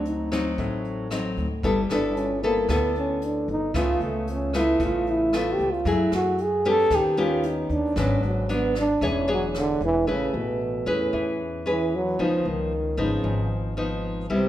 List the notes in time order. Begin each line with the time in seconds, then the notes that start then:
Already playing: D2 D3 F#3 C4 D#4
0.05 D#4, closed hi-hat
0.32 F#3 C4 D#4, cross-stick, closed hi-hat
0.58 A1 A2, kick, closed hi-hat
0.84 closed hi-hat
1.11 F#3 C4 D#4, cross-stick, closed hi-hat
1.37 D2, closed hi-hat
1.63 G1 G3 B3 E4 A4, kick, closed hi-hat
1.90 G1 B3 D4 E4 A4, cross-stick, closed hi-hat
2.17 C#4, closed hi-hat
2.43 A#3 B3 E4 A4, closed hi-hat
2.69 D2 D3 B3 E4 A4, kick, cross-stick, closed hi-hat
2.95 C#4, closed hi-hat
3.22 D4, closed hi-hat
3.48 G1 D#4, closed hi-hat
3.74 C#2 C#3 A3 B3 F4, kick, cross-stick, closed hi-hat
4.01 C#2 A3, closed hi-hat
4.27 closed hi-hat
4.32 C#4
4.53 A3 B3 E4 F4, cross-stick, closed hi-hat
4.80 A1 C#3 F4, kick, closed hi-hat
5.06 E4, closed hi-hat
5.33 A3 B3 F4, cross-stick, closed hi-hat
5.54 G4
5.59 C#2, closed hi-hat
5.72 F4
5.85 F#2 F#3 A3 E4 G#4, kick, closed hi-hat
5.90 E4
6.12 F#2 F#4, cross-stick, closed hi-hat
6.38 closed hi-hat
6.42 G#4
6.64 B3 C#4 G4, closed hi-hat
6.68 A4
6.90 D#2 D#3, kick, cross-stick, closed hi-hat
6.95 G4
7.17 B3 C#4 F4 G4, closed hi-hat
7.43 closed hi-hat
7.48 D#4
7.69 D#2 D4, closed hi-hat
7.96 G#1 G#2 F#3 B3 D4, kick, cross-stick, closed hi-hat
8.01 C#4
8.23 G#1 F#3, closed hi-hat
8.49 F#3 B3 D4, closed hi-hat
8.53 B3
8.75 D4, cross-stick, closed hi-hat
9.01 E1 E3 D4 G#4 C#5, kick, closed hi-hat
9.07 C#4
9.28 D4 G#4 C#5, closed hi-hat
9.32 F#3
9.54 D3, cross-stick, closed hi-hat
9.81 E1 E3, closed hi-hat
10.07 A1 C#3 A3 C#4 G#4 B4
10.34 A1 B2
10.86 E2 A2 C#4 G#4 B4
11.13 E2 E3
11.66 E3 C#4 G#4 B4
11.95 F#3
12.19 C#2 C#3 F3 B3 D#4
12.45 C#2 D#3
12.97 G#1 F3 B3 D#4
13.01 C#3
13.24 G#1 G#2
13.77 F3 B3 D#4
14.30 C2 C3 G3 B3 E4